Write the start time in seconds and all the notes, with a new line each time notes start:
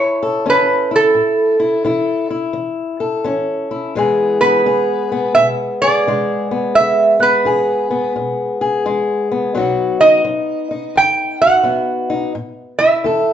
Already playing: E3 E4 A4 C#5
0.23 A4
0.46 E3 C#4
0.50 B4
0.91 E4
0.96 A4
1.14 A2
1.60 E4
1.85 E3 E4
2.30 E4
2.53 E3
3.00 A4
3.24 E3 C#4
3.71 E4
3.95 E2 E3 G#3 B3 G#4
4.41 B3 B4
4.66 E3 G#4
5.12 B3
5.35 B2 E5
5.82 G#4 D5
6.07 E3 G#3
6.51 B3
6.75 E2 E5
7.20 B3 B4
7.45 E3 G#4
7.91 B3
8.16 B2
8.61 G#4
8.86 E3 G#3
9.32 B3
9.55 B2 F#3 B3 D#4 F#4
10.00 D#4 D#5
10.25 F#3
10.71 D#4
10.96 F#2 G5
11.41 F#4 F#5
11.63 F#3 B3
12.10 D#4
12.35 A2
12.79 E4 E5
13.04 E3 A4